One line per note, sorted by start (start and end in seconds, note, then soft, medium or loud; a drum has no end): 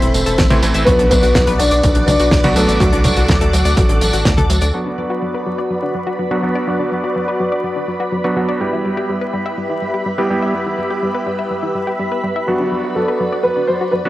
0.00 0.12 E1 medium
0.00 0.35 E3 medium
0.00 0.35 A3 medium
0.00 0.35 C4 medium
0.00 0.59 C4 medium
0.00 0.35 E4 medium
0.00 0.14 E4 medium
0.00 0.83 A4 medium
0.00 0.58 C5 loud
0.00 0.83 C5 medium
0.00 0.83 E5 medium
0.00 0.85 B5 medium
0.00 closed hi-hat medium
0.14 0.24 E1 medium
0.14 0.26 A3 medium
0.14 closed hi-hat loud
0.14 tambourine medium
0.26 0.37 E1 medium
0.26 0.34 A4 loud
0.26 closed hi-hat medium
0.26 tambourine soft
0.38 0.49 A1 loud
0.38 0.43 A3 loud
0.38 kick loud
0.38 snare loud
0.38 closed hi-hat medium
0.38 tambourine soft
0.50 0.61 A1 medium
0.50 0.60 E3 loud
0.50 0.60 A3 medium
0.50 0.60 C4 medium
0.50 0.60 E4 loud
0.50 0.55 C5 loud
0.50 closed hi-hat medium
0.50 high tom medium
0.63 0.73 A1 loud
0.63 0.84 E3 loud
0.63 0.74 A3 loud
0.63 0.84 A3 medium
0.63 0.84 C4 medium
0.63 0.84 E4 loud
0.63 closed hi-hat medium
0.63 tambourine medium
0.74 0.85 A1 medium
0.74 0.80 E5 loud
0.74 closed hi-hat medium
0.74 tambourine soft
0.85 0.97 B1 loud
0.85 0.98 F#3 loud
0.85 2.29 F#3 medium
0.85 2.29 B3 medium
0.85 1.10 B3 medium
0.85 2.29 D4 medium
0.85 2.29 F#4 medium
0.85 1.08 B4 loud
0.85 2.79 B4 medium
0.85 4.70 D5 medium
0.85 4.70 F#5 medium
0.85 4.70 D6 medium
0.85 kick loud
0.85 closed hi-hat medium
0.85 tambourine soft
0.99 1.09 B1 medium
0.99 1.10 D4 medium
0.99 closed hi-hat medium
1.10 1.21 B1 loud
1.10 1.22 F#3 medium
1.10 1.57 B3 medium
1.10 1.60 B4 loud
1.10 kick medium
1.10 closed hi-hat medium
1.10 tambourine medium
1.23 1.33 B1 medium
1.23 1.31 F#4 loud
1.23 closed hi-hat medium
1.23 tambourine soft
1.34 1.45 B1 loud
1.34 1.43 F#3 loud
1.34 kick loud
1.34 snare loud
1.34 closed hi-hat medium
1.34 tambourine soft
1.47 1.57 B1 medium
1.47 1.52 B4 loud
1.47 closed hi-hat medium
1.58 1.70 B1 medium
1.58 1.71 F#3 loud
1.58 2.05 D4 medium
1.58 2.05 D5 loud
1.58 closed hi-hat loud
1.58 tambourine medium
1.71 1.82 B1 medium
1.71 1.76 D5 loud
1.71 closed hi-hat medium
1.71 tambourine soft
1.83 1.94 B1 loud
1.83 1.92 F#3 medium
1.83 kick loud
1.83 closed hi-hat medium
1.83 tambourine soft
1.95 2.06 B1 medium
1.95 2.07 D4 medium
1.95 closed hi-hat medium
2.06 2.18 B1 loud
2.06 2.19 F#3 medium
2.06 2.53 D4 medium
2.06 2.52 D5 loud
2.06 closed hi-hat loud
2.06 high tom medium
2.06 tambourine medium
2.19 2.30 B1 medium
2.19 2.28 F#4 loud
2.19 closed hi-hat medium
2.19 tambourine soft
2.31 2.42 B1 loud
2.31 2.37 F#3 loud
2.31 kick loud
2.31 snare loud
2.31 closed hi-hat medium
2.44 2.54 B1 medium
2.44 2.53 F#3 loud
2.44 2.53 B3 medium
2.44 2.53 D4 medium
2.44 2.53 F#4 loud
2.44 2.49 B4 loud
2.44 closed hi-hat medium
2.44 high tom medium
2.55 2.66 B1 medium
2.55 2.77 F#3 loud
2.55 2.68 F#3 loud
2.55 4.22 A3 medium
2.55 2.77 B3 medium
2.55 2.77 D4 medium
2.55 2.77 F#4 loud
2.55 4.21 A4 medium
2.55 closed hi-hat loud
2.55 tambourine medium
2.68 2.78 A1 medium
2.68 2.73 D5 loud
2.68 closed hi-hat medium
2.68 tambourine soft
2.80 2.91 D2 loud
2.80 4.23 F#3 medium
2.80 2.92 F#3 loud
2.80 4.22 A3 medium
2.80 4.23 D4 medium
2.80 4.22 F#4 medium
2.80 4.72 A4 medium
2.80 kick loud
2.80 closed hi-hat medium
2.80 tambourine soft
2.93 3.03 C2 medium
2.93 3.04 D4 medium
2.93 closed hi-hat medium
3.04 3.15 C2 medium
3.04 3.16 F#3 medium
3.04 kick medium
3.04 closed hi-hat loud
3.04 high tom medium
3.04 tambourine medium
3.16 3.27 C2 medium
3.16 3.25 F#4 loud
3.16 closed hi-hat medium
3.16 tambourine soft
3.28 3.39 D2 loud
3.28 3.37 F#3 loud
3.28 kick loud
3.28 snare loud
3.28 closed hi-hat medium
3.28 tambourine soft
3.41 3.51 D2 medium
3.41 3.46 A4 loud
3.41 closed hi-hat medium
3.53 3.63 D2 loud
3.53 3.65 F#3 loud
3.53 closed hi-hat loud
3.53 tambourine medium
3.65 3.75 D2 medium
3.65 3.70 D5 loud
3.65 closed hi-hat medium
3.65 tambourine soft
3.77 3.87 A1 loud
3.77 3.85 F#3 medium
3.77 kick loud
3.77 closed hi-hat medium
3.77 tambourine soft
3.89 3.99 A1 medium
3.89 4.01 D4 medium
3.89 closed hi-hat medium
4.01 4.11 A1 loud
4.01 4.13 F#3 medium
4.01 closed hi-hat loud
4.01 tambourine medium
4.13 4.24 A1 medium
4.13 4.22 F#4 loud
4.13 closed hi-hat medium
4.13 tambourine soft
4.25 4.36 D2 loud
4.25 4.30 F#3 loud
4.25 kick loud
4.25 snare loud
4.25 closed hi-hat medium
4.37 4.48 D2 medium
4.37 4.42 A4 loud
4.37 closed hi-hat medium
4.37 high tom medium
4.50 4.60 D2 loud
4.50 4.61 F#3 loud
4.50 closed hi-hat loud
4.50 tambourine medium
4.61 4.72 D2 medium
4.61 4.67 D5 loud
4.61 closed hi-hat medium
4.61 tambourine soft
4.74 6.16 F#3 medium
4.74 4.85 F#3 medium
4.74 6.16 B3 medium
4.74 6.16 D4 medium
4.74 8.57 F#4 medium
4.74 6.16 F#4 medium
4.74 8.57 B4 medium
4.74 8.57 D5 medium
4.74 14.09 B5 medium
4.86 4.97 D4 medium
4.98 5.10 F#3 medium
5.10 5.18 F#4 loud
5.22 5.30 F#3 medium
5.34 5.39 B4 medium
5.46 5.58 F#3 medium
5.58 5.63 D5 medium
5.71 5.79 F#3 medium
5.83 5.94 D4 medium
5.95 6.06 F#3 medium
6.07 6.15 F#4 medium
6.19 6.24 F#3 loud
6.31 6.40 F#3 medium
6.31 6.40 B3 medium
6.31 6.40 D4 medium
6.31 6.40 F#4 loud
6.31 6.36 B4 loud
6.43 6.65 F#3 medium
6.43 6.55 F#3 medium
6.43 6.65 B3 medium
6.43 6.64 D4 medium
6.43 6.65 F#4 medium
6.55 6.60 D5 medium
6.67 8.10 F#3 medium
6.67 6.79 F#3 medium
6.67 8.10 B3 medium
6.67 8.10 D4 medium
6.67 8.10 F#4 medium
6.80 6.91 D4 medium
6.92 7.03 F#3 medium
7.04 7.12 F#4 loud
7.16 7.24 F#3 medium
7.28 7.33 B4 medium
7.40 7.51 F#3 medium
7.52 7.57 D5 medium
7.64 7.72 F#3 medium
7.76 7.88 D4 medium
7.88 8.00 F#3 medium
8.00 8.08 F#4 loud
8.12 8.17 F#3 loud
8.24 8.34 F#3 medium
8.24 8.34 B3 medium
8.24 8.34 D4 medium
8.24 8.34 F#4 loud
8.24 8.29 B4 loud
8.36 8.48 F#3 loud
8.36 8.58 F#3 medium
8.36 8.58 B3 medium
8.36 8.58 D4 medium
8.36 8.58 F#4 medium
8.48 8.54 D5 medium
8.61 8.72 G3 loud
8.61 10.03 G3 medium
8.61 10.03 B3 medium
8.61 10.03 E4 medium
8.61 10.03 G4 medium
8.61 12.44 G4 medium
8.61 14.09 B4 medium
8.61 12.44 E5 medium
8.73 8.85 E4 medium
8.85 8.97 G3 medium
8.97 9.05 G4 loud
9.09 9.18 G3 loud
9.21 9.26 B4 medium
9.33 9.45 G3 medium
9.46 9.51 E5 medium
9.58 9.66 G3 medium
9.70 9.81 E4 medium
9.82 9.94 G3 medium
9.94 10.02 G4 loud
10.06 10.11 G3 loud
10.18 10.27 G3 medium
10.18 10.27 B3 medium
10.18 10.27 E4 medium
10.18 10.27 G4 loud
10.18 10.23 B4 loud
10.30 10.42 G3 loud
10.30 10.52 G3 medium
10.30 10.52 B3 medium
10.30 10.52 E4 medium
10.30 10.52 G4 medium
10.42 10.47 E5 medium
10.54 10.66 G3 loud
10.54 11.97 G3 medium
10.54 11.97 B3 medium
10.54 11.97 E4 medium
10.54 11.97 G4 medium
10.66 10.78 E4 medium
10.78 10.90 G3 medium
10.90 10.99 G4 loud
11.03 11.11 G3 medium
11.15 11.20 B4 loud
11.27 11.38 G3 loud
11.39 11.44 E5 medium
11.51 11.59 G3 medium
11.63 11.75 E4 medium
11.75 11.87 G3 medium
11.87 11.96 G4 medium
11.99 12.04 G3 loud
12.12 12.17 B4 loud
12.24 12.35 G3 loud
12.36 12.41 E5 loud
12.47 13.90 F#3 medium
12.47 12.59 F#3 loud
12.47 13.90 B3 medium
12.47 13.90 D4 medium
12.47 12.97 F#4 medium
12.47 13.90 F#4 medium
12.47 14.09 F#4 medium
12.47 14.09 D5 medium
12.60 12.71 D4 medium
12.72 12.84 F#3 medium
12.84 12.92 F#4 loud
12.95 13.04 F#3 medium
12.95 13.41 A4 medium
13.08 13.13 B4 loud
13.20 13.32 F#3 loud
13.33 13.38 D5 loud
13.43 13.53 F#3 medium
13.43 13.67 B4 loud
13.57 13.68 D4 medium
13.67 13.80 F#3 medium
13.67 13.91 C5 medium
13.81 13.89 F#4 loud
13.91 13.98 F#3 loud
13.91 13.97 B4 medium
14.05 14.09 F#3 medium
14.05 14.09 B3 medium
14.05 14.09 D4 medium
14.05 14.09 F#4 loud
14.05 14.09 B4 loud